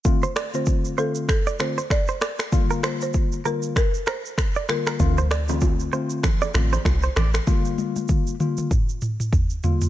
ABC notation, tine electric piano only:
X:1
M:4/4
L:1/16
Q:"Swing 16ths" 1/4=97
K:Gm
V:1 name="Tine electric piano"
[D,A,CF] z2 [D,A,CF]3 [D,A,CF]2 z2 [D,A,CF] z4 z | [D,G,B,F]6 [D,G,B,F]2 z6 [D,G,B,F]2 | [D,A,CF] z2 [D,A,CF]3 [D,A,CF]2 z2 [D,A,CF] z4 z | [D,G,B,F]6 [D,G,B,F]2 z6 [D,G,B,F]2 |]